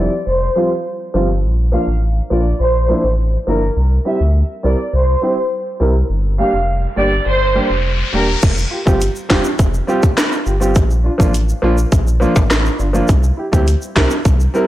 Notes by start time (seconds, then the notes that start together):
0.00 E4
0.27 F1 C5
0.56 F3 G3 C4 F4
1.14 G1 F3 G3 C4 F4
1.44 A#1
1.72 F3 A#3 D4 F4 F5
1.87 A1
2.30 A#1 F3 A#3 D4 F4 D5
2.60 A#1 C5
2.89 F3 A#3 D4 E4
3.04 A1
3.47 G1 F3 A#3 D4 E4 A#4
3.77 C2
4.05 G3 C4 E4 G4 E5
4.21 D2
4.63 C2 G3 C4 E4 A#4 D5
4.93 C2 C5
5.22 G3 C4 E4 G4
5.80 C2 G3 C4 E4 A#4
6.10 G1, riser
6.38 G3 A#3 D4 G4 F5
6.54 F1
6.96 G1 G3 A#3 D4 G4 D5
7.26 G1 C5
7.54 G3 A#3 D4 G4
7.70 F1
8.13 E1 G3 A#3 D4 G4 A#4
8.42 F1, kick, closed hi-hat, crash, shaker
8.57 shaker
8.71 F4 G4
8.85 G1 G3 C4 F4 G4, kick, shaker
9.01 closed hi-hat, shaker
9.16 shaker
9.29 F1 G3 C4 F4 G4, finger snap, kick, snare
9.44 shaker
9.59 F1, kick, closed hi-hat, shaker
9.74 shaker
9.87 G3 C4 F4 G4, shaker
10.03 kick, shaker
10.17 finger snap, cross-stick, snare, closed hi-hat, shaker
10.32 shaker
10.45 G1 F4 G4, shaker
10.60 G3 C4 F4 G4, shaker
10.75 A#1, kick, closed hi-hat, shaker
10.90 shaker
11.04 D4 F4
11.18 A1 F3 A#3 D4 F4, kick, shaker
11.34 closed hi-hat, shaker
11.49 shaker
11.62 A#1 F3 A#3 D4 F4
11.78 shaker
11.92 A#1, kick, closed hi-hat, shaker
12.07 shaker
12.20 F3 A#3 D4 F4, shaker
12.36 A1, kick, high timbale, shaker
12.50 finger snap, cross-stick, snare, closed hi-hat, shaker
12.66 shaker
12.79 G1 D4 F4, shaker
12.93 F3 A#3 D4 F4, shaker
13.08 C2, kick, closed hi-hat, shaker
13.23 shaker
13.37 E4 G4
13.52 D2 G3 C4 E4 G4, kick, shaker
13.67 closed hi-hat, shaker
13.82 shaker
13.95 C2 G3 C4 E4 A#4, finger snap, kick, snare
14.10 shaker
14.25 C2, kick, closed hi-hat, shaker
14.40 shaker
14.54 G3 C4 E4 A#4, shaker